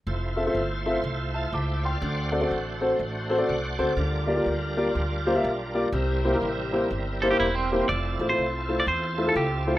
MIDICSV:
0, 0, Header, 1, 6, 480
1, 0, Start_track
1, 0, Key_signature, -1, "major"
1, 0, Tempo, 489396
1, 58, Time_signature, 4, 2, 24, 8
1, 9596, End_track
2, 0, Start_track
2, 0, Title_t, "Clean electric guitar"
2, 0, Program_c, 0, 27
2, 7738, Note_on_c, 0, 74, 92
2, 8131, Note_off_c, 0, 74, 0
2, 8135, Note_on_c, 0, 72, 83
2, 8624, Note_off_c, 0, 72, 0
2, 8628, Note_on_c, 0, 74, 82
2, 8706, Note_off_c, 0, 74, 0
2, 8710, Note_on_c, 0, 72, 94
2, 9105, Note_off_c, 0, 72, 0
2, 9108, Note_on_c, 0, 69, 74
2, 9182, Note_off_c, 0, 69, 0
2, 9186, Note_on_c, 0, 67, 80
2, 9577, Note_off_c, 0, 67, 0
2, 9596, End_track
3, 0, Start_track
3, 0, Title_t, "Tonewheel organ"
3, 0, Program_c, 1, 16
3, 65, Note_on_c, 1, 57, 64
3, 66, Note_on_c, 1, 72, 68
3, 67, Note_on_c, 1, 65, 60
3, 71, Note_on_c, 1, 64, 63
3, 1313, Note_on_c, 1, 81, 59
3, 1326, Note_on_c, 1, 77, 51
3, 1485, Note_off_c, 1, 81, 0
3, 1492, Note_off_c, 1, 77, 0
3, 1495, Note_on_c, 1, 79, 64
3, 1504, Note_on_c, 1, 76, 55
3, 1782, Note_off_c, 1, 79, 0
3, 1787, Note_off_c, 1, 76, 0
3, 1794, Note_on_c, 1, 77, 57
3, 1797, Note_on_c, 1, 74, 49
3, 1942, Note_off_c, 1, 57, 0
3, 1942, Note_off_c, 1, 65, 0
3, 1942, Note_off_c, 1, 72, 0
3, 1945, Note_off_c, 1, 64, 0
3, 1973, Note_on_c, 1, 62, 60
3, 1974, Note_on_c, 1, 72, 72
3, 1978, Note_on_c, 1, 66, 60
3, 1980, Note_on_c, 1, 57, 69
3, 2252, Note_off_c, 1, 77, 0
3, 2253, Note_off_c, 1, 74, 0
3, 3425, Note_on_c, 1, 78, 61
3, 3427, Note_on_c, 1, 74, 50
3, 3700, Note_off_c, 1, 74, 0
3, 3707, Note_off_c, 1, 78, 0
3, 3712, Note_on_c, 1, 74, 64
3, 3855, Note_off_c, 1, 62, 0
3, 3856, Note_off_c, 1, 72, 0
3, 3858, Note_off_c, 1, 66, 0
3, 3859, Note_off_c, 1, 57, 0
3, 3887, Note_on_c, 1, 65, 59
3, 3889, Note_on_c, 1, 62, 62
3, 3893, Note_on_c, 1, 70, 78
3, 3895, Note_on_c, 1, 55, 69
3, 4170, Note_off_c, 1, 74, 0
3, 5772, Note_off_c, 1, 65, 0
3, 5773, Note_off_c, 1, 62, 0
3, 5775, Note_off_c, 1, 70, 0
3, 5776, Note_off_c, 1, 55, 0
3, 5815, Note_on_c, 1, 64, 59
3, 5818, Note_on_c, 1, 55, 69
3, 5818, Note_on_c, 1, 60, 61
3, 5822, Note_on_c, 1, 70, 79
3, 7697, Note_off_c, 1, 64, 0
3, 7698, Note_off_c, 1, 55, 0
3, 7698, Note_off_c, 1, 60, 0
3, 7700, Note_off_c, 1, 70, 0
3, 7723, Note_on_c, 1, 65, 59
3, 7728, Note_on_c, 1, 60, 52
3, 7728, Note_on_c, 1, 64, 53
3, 7730, Note_on_c, 1, 69, 67
3, 9596, Note_off_c, 1, 60, 0
3, 9596, Note_off_c, 1, 64, 0
3, 9596, Note_off_c, 1, 65, 0
3, 9596, Note_off_c, 1, 69, 0
3, 9596, End_track
4, 0, Start_track
4, 0, Title_t, "Upright piano"
4, 0, Program_c, 2, 0
4, 355, Note_on_c, 2, 65, 65
4, 358, Note_on_c, 2, 76, 75
4, 359, Note_on_c, 2, 69, 64
4, 361, Note_on_c, 2, 60, 68
4, 418, Note_off_c, 2, 65, 0
4, 419, Note_off_c, 2, 76, 0
4, 420, Note_off_c, 2, 69, 0
4, 421, Note_off_c, 2, 60, 0
4, 457, Note_on_c, 2, 60, 70
4, 457, Note_on_c, 2, 69, 60
4, 458, Note_on_c, 2, 65, 62
4, 461, Note_on_c, 2, 76, 71
4, 597, Note_off_c, 2, 60, 0
4, 597, Note_off_c, 2, 69, 0
4, 598, Note_off_c, 2, 65, 0
4, 599, Note_off_c, 2, 76, 0
4, 841, Note_on_c, 2, 60, 77
4, 843, Note_on_c, 2, 65, 66
4, 843, Note_on_c, 2, 69, 63
4, 844, Note_on_c, 2, 76, 86
4, 962, Note_off_c, 2, 60, 0
4, 963, Note_off_c, 2, 65, 0
4, 963, Note_off_c, 2, 69, 0
4, 963, Note_off_c, 2, 76, 0
4, 1316, Note_on_c, 2, 81, 58
4, 1328, Note_on_c, 2, 76, 52
4, 1486, Note_off_c, 2, 81, 0
4, 1493, Note_off_c, 2, 76, 0
4, 1506, Note_on_c, 2, 86, 64
4, 1512, Note_on_c, 2, 81, 53
4, 1788, Note_off_c, 2, 86, 0
4, 1791, Note_off_c, 2, 81, 0
4, 1816, Note_on_c, 2, 84, 59
4, 1820, Note_on_c, 2, 79, 47
4, 1986, Note_on_c, 2, 50, 61
4, 2263, Note_off_c, 2, 84, 0
4, 2265, Note_off_c, 2, 79, 0
4, 2272, Note_on_c, 2, 60, 72
4, 2273, Note_on_c, 2, 66, 70
4, 2273, Note_on_c, 2, 69, 65
4, 2275, Note_on_c, 2, 74, 79
4, 2336, Note_off_c, 2, 60, 0
4, 2336, Note_off_c, 2, 66, 0
4, 2336, Note_off_c, 2, 69, 0
4, 2337, Note_off_c, 2, 74, 0
4, 2364, Note_on_c, 2, 69, 64
4, 2366, Note_on_c, 2, 74, 77
4, 2368, Note_on_c, 2, 60, 69
4, 2369, Note_on_c, 2, 66, 64
4, 2510, Note_off_c, 2, 69, 0
4, 2511, Note_off_c, 2, 74, 0
4, 2512, Note_off_c, 2, 60, 0
4, 2512, Note_off_c, 2, 66, 0
4, 2723, Note_off_c, 2, 50, 0
4, 2754, Note_on_c, 2, 60, 70
4, 2757, Note_on_c, 2, 66, 68
4, 2758, Note_on_c, 2, 69, 69
4, 2760, Note_on_c, 2, 72, 77
4, 2878, Note_off_c, 2, 60, 0
4, 2879, Note_off_c, 2, 66, 0
4, 2880, Note_off_c, 2, 69, 0
4, 2881, Note_off_c, 2, 72, 0
4, 3237, Note_on_c, 2, 60, 75
4, 3237, Note_on_c, 2, 72, 84
4, 3240, Note_on_c, 2, 66, 75
4, 3240, Note_on_c, 2, 69, 69
4, 3298, Note_off_c, 2, 60, 0
4, 3298, Note_off_c, 2, 72, 0
4, 3299, Note_off_c, 2, 66, 0
4, 3300, Note_off_c, 2, 69, 0
4, 3318, Note_on_c, 2, 69, 65
4, 3319, Note_on_c, 2, 74, 76
4, 3323, Note_on_c, 2, 60, 65
4, 3323, Note_on_c, 2, 66, 68
4, 3467, Note_off_c, 2, 69, 0
4, 3467, Note_off_c, 2, 74, 0
4, 3469, Note_off_c, 2, 60, 0
4, 3469, Note_off_c, 2, 66, 0
4, 3713, Note_on_c, 2, 69, 69
4, 3715, Note_on_c, 2, 60, 76
4, 3715, Note_on_c, 2, 72, 88
4, 3716, Note_on_c, 2, 66, 71
4, 3837, Note_off_c, 2, 69, 0
4, 3838, Note_off_c, 2, 60, 0
4, 3838, Note_off_c, 2, 66, 0
4, 3838, Note_off_c, 2, 72, 0
4, 3896, Note_on_c, 2, 50, 64
4, 4189, Note_on_c, 2, 58, 69
4, 4190, Note_on_c, 2, 74, 81
4, 4191, Note_on_c, 2, 67, 66
4, 4194, Note_on_c, 2, 65, 61
4, 4254, Note_off_c, 2, 58, 0
4, 4254, Note_off_c, 2, 74, 0
4, 4255, Note_off_c, 2, 67, 0
4, 4256, Note_off_c, 2, 65, 0
4, 4276, Note_on_c, 2, 74, 78
4, 4277, Note_on_c, 2, 65, 64
4, 4278, Note_on_c, 2, 67, 60
4, 4279, Note_on_c, 2, 58, 71
4, 4425, Note_off_c, 2, 74, 0
4, 4426, Note_off_c, 2, 65, 0
4, 4426, Note_off_c, 2, 67, 0
4, 4427, Note_off_c, 2, 58, 0
4, 4638, Note_off_c, 2, 50, 0
4, 4679, Note_on_c, 2, 58, 76
4, 4681, Note_on_c, 2, 65, 67
4, 4681, Note_on_c, 2, 67, 67
4, 4681, Note_on_c, 2, 74, 83
4, 4800, Note_off_c, 2, 58, 0
4, 4801, Note_off_c, 2, 65, 0
4, 4801, Note_off_c, 2, 67, 0
4, 4801, Note_off_c, 2, 74, 0
4, 5161, Note_on_c, 2, 67, 69
4, 5165, Note_on_c, 2, 65, 73
4, 5167, Note_on_c, 2, 58, 78
4, 5167, Note_on_c, 2, 72, 85
4, 5220, Note_off_c, 2, 67, 0
4, 5222, Note_off_c, 2, 65, 0
4, 5223, Note_off_c, 2, 58, 0
4, 5223, Note_off_c, 2, 72, 0
4, 5250, Note_on_c, 2, 58, 70
4, 5251, Note_on_c, 2, 67, 61
4, 5252, Note_on_c, 2, 76, 74
4, 5253, Note_on_c, 2, 65, 65
4, 5392, Note_off_c, 2, 58, 0
4, 5393, Note_off_c, 2, 67, 0
4, 5394, Note_off_c, 2, 65, 0
4, 5394, Note_off_c, 2, 76, 0
4, 5635, Note_on_c, 2, 58, 75
4, 5638, Note_on_c, 2, 67, 69
4, 5639, Note_on_c, 2, 74, 84
4, 5641, Note_on_c, 2, 65, 71
4, 5758, Note_off_c, 2, 58, 0
4, 5759, Note_off_c, 2, 67, 0
4, 5759, Note_off_c, 2, 74, 0
4, 5761, Note_off_c, 2, 65, 0
4, 5818, Note_on_c, 2, 48, 66
4, 6127, Note_on_c, 2, 72, 82
4, 6128, Note_on_c, 2, 64, 64
4, 6129, Note_on_c, 2, 67, 68
4, 6130, Note_on_c, 2, 58, 75
4, 6183, Note_off_c, 2, 64, 0
4, 6183, Note_off_c, 2, 72, 0
4, 6184, Note_off_c, 2, 58, 0
4, 6184, Note_off_c, 2, 67, 0
4, 6215, Note_on_c, 2, 67, 62
4, 6216, Note_on_c, 2, 58, 71
4, 6218, Note_on_c, 2, 64, 66
4, 6218, Note_on_c, 2, 70, 79
4, 6355, Note_off_c, 2, 58, 0
4, 6355, Note_off_c, 2, 67, 0
4, 6356, Note_off_c, 2, 64, 0
4, 6356, Note_off_c, 2, 70, 0
4, 6559, Note_off_c, 2, 48, 0
4, 6595, Note_on_c, 2, 64, 66
4, 6601, Note_on_c, 2, 58, 75
4, 6601, Note_on_c, 2, 72, 79
4, 6605, Note_on_c, 2, 67, 63
4, 6718, Note_off_c, 2, 64, 0
4, 6721, Note_off_c, 2, 58, 0
4, 6721, Note_off_c, 2, 72, 0
4, 6723, Note_off_c, 2, 67, 0
4, 7086, Note_on_c, 2, 64, 71
4, 7088, Note_on_c, 2, 72, 87
4, 7089, Note_on_c, 2, 58, 75
4, 7090, Note_on_c, 2, 67, 68
4, 7142, Note_off_c, 2, 64, 0
4, 7143, Note_off_c, 2, 72, 0
4, 7144, Note_off_c, 2, 58, 0
4, 7144, Note_off_c, 2, 67, 0
4, 7169, Note_on_c, 2, 58, 67
4, 7171, Note_on_c, 2, 64, 62
4, 7172, Note_on_c, 2, 67, 58
4, 7172, Note_on_c, 2, 72, 71
4, 7312, Note_off_c, 2, 58, 0
4, 7313, Note_off_c, 2, 64, 0
4, 7313, Note_off_c, 2, 72, 0
4, 7314, Note_off_c, 2, 67, 0
4, 7572, Note_on_c, 2, 67, 70
4, 7573, Note_on_c, 2, 64, 70
4, 7574, Note_on_c, 2, 58, 79
4, 7579, Note_on_c, 2, 72, 81
4, 7686, Note_off_c, 2, 67, 0
4, 7687, Note_off_c, 2, 58, 0
4, 7687, Note_off_c, 2, 64, 0
4, 7690, Note_off_c, 2, 72, 0
4, 8045, Note_on_c, 2, 65, 57
4, 8050, Note_on_c, 2, 72, 70
4, 8051, Note_on_c, 2, 57, 63
4, 8051, Note_on_c, 2, 64, 56
4, 8102, Note_off_c, 2, 65, 0
4, 8104, Note_off_c, 2, 72, 0
4, 8105, Note_off_c, 2, 57, 0
4, 8105, Note_off_c, 2, 64, 0
4, 8138, Note_on_c, 2, 57, 62
4, 8138, Note_on_c, 2, 64, 56
4, 8141, Note_on_c, 2, 65, 54
4, 8142, Note_on_c, 2, 72, 69
4, 8276, Note_off_c, 2, 64, 0
4, 8277, Note_off_c, 2, 57, 0
4, 8278, Note_off_c, 2, 65, 0
4, 8278, Note_off_c, 2, 72, 0
4, 8520, Note_on_c, 2, 57, 63
4, 8524, Note_on_c, 2, 64, 59
4, 8525, Note_on_c, 2, 72, 71
4, 8527, Note_on_c, 2, 65, 60
4, 8640, Note_off_c, 2, 57, 0
4, 8642, Note_off_c, 2, 64, 0
4, 8643, Note_off_c, 2, 72, 0
4, 8644, Note_off_c, 2, 65, 0
4, 8998, Note_on_c, 2, 72, 69
4, 9002, Note_on_c, 2, 65, 59
4, 9003, Note_on_c, 2, 64, 60
4, 9004, Note_on_c, 2, 57, 70
4, 9058, Note_off_c, 2, 72, 0
4, 9060, Note_off_c, 2, 65, 0
4, 9061, Note_off_c, 2, 64, 0
4, 9062, Note_off_c, 2, 57, 0
4, 9089, Note_on_c, 2, 65, 56
4, 9091, Note_on_c, 2, 69, 66
4, 9092, Note_on_c, 2, 57, 61
4, 9092, Note_on_c, 2, 64, 57
4, 9232, Note_off_c, 2, 65, 0
4, 9233, Note_off_c, 2, 57, 0
4, 9233, Note_off_c, 2, 64, 0
4, 9233, Note_off_c, 2, 69, 0
4, 9483, Note_on_c, 2, 64, 60
4, 9483, Note_on_c, 2, 65, 63
4, 9486, Note_on_c, 2, 72, 78
4, 9487, Note_on_c, 2, 57, 68
4, 9541, Note_off_c, 2, 64, 0
4, 9541, Note_off_c, 2, 65, 0
4, 9542, Note_off_c, 2, 72, 0
4, 9543, Note_off_c, 2, 57, 0
4, 9596, End_track
5, 0, Start_track
5, 0, Title_t, "Clean electric guitar"
5, 0, Program_c, 3, 27
5, 7081, Note_on_c, 3, 69, 67
5, 7161, Note_off_c, 3, 69, 0
5, 7165, Note_on_c, 3, 67, 68
5, 7250, Note_off_c, 3, 67, 0
5, 7255, Note_on_c, 3, 64, 75
5, 7398, Note_off_c, 3, 64, 0
5, 7404, Note_on_c, 3, 60, 68
5, 7718, Note_off_c, 3, 60, 0
5, 9596, End_track
6, 0, Start_track
6, 0, Title_t, "Upright bass"
6, 0, Program_c, 4, 32
6, 65, Note_on_c, 4, 29, 92
6, 469, Note_off_c, 4, 29, 0
6, 536, Note_on_c, 4, 31, 83
6, 944, Note_off_c, 4, 31, 0
6, 1016, Note_on_c, 4, 36, 86
6, 1424, Note_off_c, 4, 36, 0
6, 1497, Note_on_c, 4, 37, 81
6, 1904, Note_off_c, 4, 37, 0
6, 1977, Note_on_c, 4, 38, 98
6, 2385, Note_off_c, 4, 38, 0
6, 2462, Note_on_c, 4, 33, 83
6, 2867, Note_off_c, 4, 33, 0
6, 2938, Note_on_c, 4, 33, 89
6, 3345, Note_off_c, 4, 33, 0
6, 3420, Note_on_c, 4, 36, 80
6, 3674, Note_off_c, 4, 36, 0
6, 3717, Note_on_c, 4, 38, 76
6, 3868, Note_off_c, 4, 38, 0
6, 3889, Note_on_c, 4, 38, 85
6, 4300, Note_off_c, 4, 38, 0
6, 4372, Note_on_c, 4, 38, 75
6, 4781, Note_off_c, 4, 38, 0
6, 4857, Note_on_c, 4, 38, 83
6, 5264, Note_off_c, 4, 38, 0
6, 5337, Note_on_c, 4, 35, 85
6, 5744, Note_off_c, 4, 35, 0
6, 5810, Note_on_c, 4, 36, 97
6, 6220, Note_off_c, 4, 36, 0
6, 6296, Note_on_c, 4, 33, 73
6, 6703, Note_off_c, 4, 33, 0
6, 6773, Note_on_c, 4, 31, 81
6, 7182, Note_off_c, 4, 31, 0
6, 7255, Note_on_c, 4, 28, 83
6, 7663, Note_off_c, 4, 28, 0
6, 7739, Note_on_c, 4, 29, 93
6, 7994, Note_off_c, 4, 29, 0
6, 8036, Note_on_c, 4, 33, 80
6, 8188, Note_off_c, 4, 33, 0
6, 8219, Note_on_c, 4, 36, 75
6, 8625, Note_off_c, 4, 36, 0
6, 8697, Note_on_c, 4, 40, 89
6, 9104, Note_off_c, 4, 40, 0
6, 9174, Note_on_c, 4, 37, 89
6, 9583, Note_off_c, 4, 37, 0
6, 9596, End_track
0, 0, End_of_file